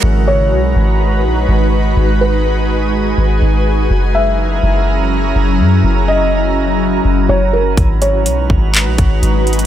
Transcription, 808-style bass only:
\new Staff \with { instrumentName = "808-style bass" } { \clef bass \time 4/4 \key gis \minor \tempo 4 = 124 gis,,4 b,,8 gis,,4 ais,,8 gis,,4 | gis,,2~ gis,,8 gis,,8 gis,,4 | fis,,4. fis,,4. fis,,8 fis,8 | fis,,2~ fis,,8 fis,,8 fis,,4 |
gis,,4 b,,8 gis,,8. ais,,16 gis,,8 gis,,4 | }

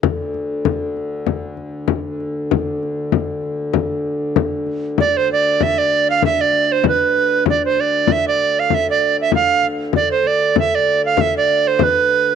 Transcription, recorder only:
\new Staff \with { instrumentName = "Recorder" } { \time 2/4 \key d \dorian \tempo 4 = 97 r2 | r2 | r2 | r2 |
d''16 c''16 d''8 e''16 d''8 f''16 | e''16 d''8 c''16 b'4 | d''16 c''16 d''8 e''16 d''8 f''16 | e''16 d''8 e''16 f''8 r8 |
d''16 c''16 d''8 e''16 d''8 f''16 | e''16 d''8 c''16 b'4 | }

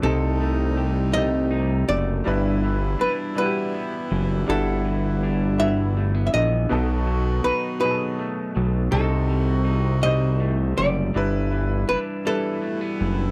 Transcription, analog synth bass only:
\new Staff \with { instrumentName = "Analog synth bass" } { \clef bass \time 6/8 \key g \major \tempo 4. = 54 c,2~ c,8 fis,,8 | g,,4 fis,,8 r4 fis,,8 | g,,2~ g,,8 bes,,8 | b,,4 b,,8 r4 b,,8 |
c,2~ c,8 fis,,8 | g,,4 fis,,8 r4 fis,,8 | }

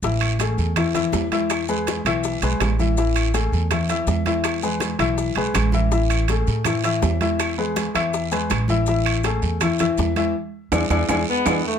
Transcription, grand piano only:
\new Staff \with { instrumentName = "Grand piano" } { \time 4/4 \key e \mixolydian \tempo 4 = 163 <e e' e''>4 <a gis' a'>4 <e e' e''>8 <e e' e''>4 <e e' e''>8~ | <e e' e''>8 <gis gis' b'>4 <e e' e''>4 <gis gis' b'>4 <e e' e''>8 | <e e' e''>4 <a gis' a'>4 <e e' e''>8 <e e' e''>4 <e e' e''>8~ | <e e' e''>8 <gis gis' b'>4 <e e' e''>4 <gis gis' b'>4 <e e' e''>8 |
<e e' e''>4 <a gis' a'>4 <e e' e''>8 <e e' e''>4 <e e' e''>8~ | <e e' e''>8 <gis gis' b'>4 <e e' e''>4 <gis gis' b'>4 <e e' e''>8 | <e e' e''>4 <a gis' a'>4 <e e' e''>8 <e e' e''>4 <e e' e''>8 | r4 <d' e' gis'>8 <d' e' gis'>8 <d' e' gis'>8 r8 <d' e' gis'>8 r8 | }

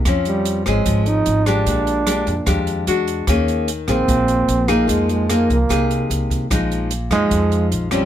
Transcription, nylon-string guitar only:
\new Staff \with { instrumentName = "Nylon-string guitar" } { \time 4/4 \key bes \dorian \tempo 4 = 149 << { <c' des'>4. <c' des' aes'>2 <aes d' g'>8~ | <aes d' g'>4 <aes d' g'>8 r8 <aes d' g'>4 <gis d' fis'>4 | <bes des' aes'>4 r8 <bes aes'>2 <bes ees' aes'>8~ | <bes ees' aes'>4 <bes ees' aes'>8 r8 <bes ees' aes'>2 |
<f aes ees'>4 r8 <f aes ees'>2 <f c' des'>8 | } \\ { f2 f2 | bes,2 f,4 r4 | ees2 bes,2 | f2 c2 |
bes,2 f,2 | } >> }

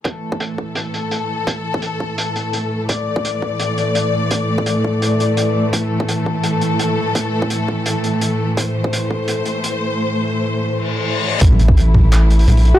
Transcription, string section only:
\new Staff \with { instrumentName = "String section" } { \time 4/4 \key a \minor \tempo 4 = 169 << { a'1~ | a'1 | d''1~ | d''1 |
a'1~ | a'1 | c''1~ | c''1 |
e'1 | } \\ { <a, e a>1~ | <a, e a>1~ | <a, e a>1~ | <a, e a>1~ |
<a, e a>1~ | <a, e a>1~ | <a, e a>1~ | <a, e a>1 |
<e a>1 | } >> }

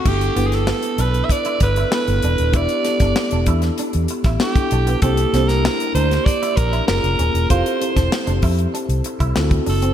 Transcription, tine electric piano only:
\new Staff \with { instrumentName = "Tine electric piano" } { \time 4/4 \key g \mixolydian \tempo 4 = 97 <b d' e' a'>8 <b d' e' b'>2 r8 <b d' e' a'>4 | <b d' e' g'>8 <b d' e' a'>2 r8 <b d' e' a'>4 | <bes d' e' g'>8 <bes d' e' g'>2 r8 <ais cis' eis' aes'>4 | <c' e' g' a'>8 <c' e' g' c''>2 r8 <c' e' f' fis' a'>4 | }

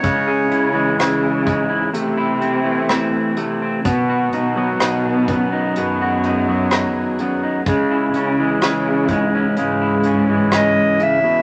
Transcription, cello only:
\new Staff \with { instrumentName = "Cello" } { \clef bass \time 4/4 \key cis \minor \tempo 4 = 63 cis8 cis8 cis4 c2 | b,8 b,8 b,4 fis,2 | cis8 cis8 cis4 gis,2 | }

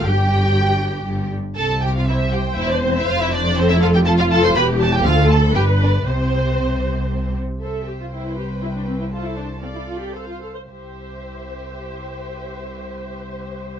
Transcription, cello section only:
\new Staff \with { instrumentName = "Cello section" } { \clef bass \time 3/4 \key c \major \tempo 4 = 118 g,2 g,8 r8 | c2 e,4 | f,2. | e,4 d,4 g,4 |
c2~ c8 r8 | c,2.~ | c,2~ c,8 r8 | c,2.~ |
c,2. | }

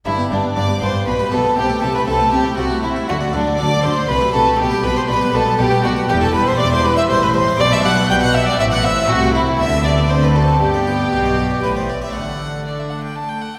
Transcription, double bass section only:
\new Staff \with { instrumentName = "Double bass section" } { \clef bass \time 3/4 \key g \major \tempo 4 = 119 g,,8 g,,8 g,,8 g,,8 b,,8 b,,8 | c,8 c,8 c,8 c,8 c,8 c,8 | d,8 d,8 d,8 d,8 c,8 c,8 | b,,8 b,,8 b,,8 b,,8 b,,8 b,,8 |
e,,4 e,,4 a,,4 | b,,4 b,,4 a,,4 | c,4 d,4 d,4 | g,,4 b,,4 a,,4 |
\key d \major r2. | }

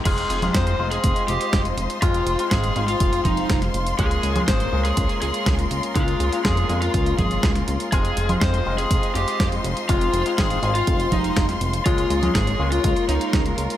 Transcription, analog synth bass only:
\new Staff \with { instrumentName = "Analog synth bass" } { \clef bass \time 4/4 \key f \minor \tempo 4 = 122 f,,8 f,,8 f,8 f,,8 f,,8 f,,8 f,,8 f,,8 | f,,8 f,,8 aes,,8 aes,,8 f,,8 f,,8 f,,8 f,,8 | des,8 des,8 aes,,8 des,8 des,8 des,8 des,8 des,8 | des,8 des,8 f,8 f,8 des,8 aes,,8 des,8 des,8 |
f,,8 f,,8 f,8 f,,8 f,,8 f,,8 f,,8 f,,8 | f,,8 f,,8 aes,,8 aes,,8 f,,8 f,,8 f,,8 f,,8 | des,8 des,8 aes,,8 des,8 des,8 des,8 des,8 des,8 | }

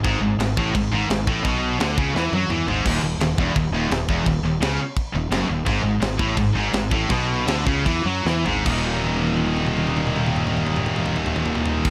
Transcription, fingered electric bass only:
\new Staff \with { instrumentName = "Fingered electric bass" } { \clef bass \time 4/4 \key ees \minor \tempo 4 = 171 gis,,8 gis,,8 gis,,8 a,,8 gis,,8 gis,,8 gis,,8 a,,8 | b,,4 d,8 cis,8 e,8 fis,8 e,8 gis,,8 | ees,,8 ees,,8 ees,,8 fes,,8 ees,,8 ees,,8 ees,,8 fes,,8 | ees,,8 ees,,8 des,8 r4 ees,,8 ges,,8 ees,,8 |
gis,,8 gis,,8 gis,,8 a,,8 gis,,8 gis,,8 gis,,8 a,,8 | b,,4 d,8 cis,8 e,8 fis,8 e,8 gis,,8 | ees,,1~ | ees,,1 | }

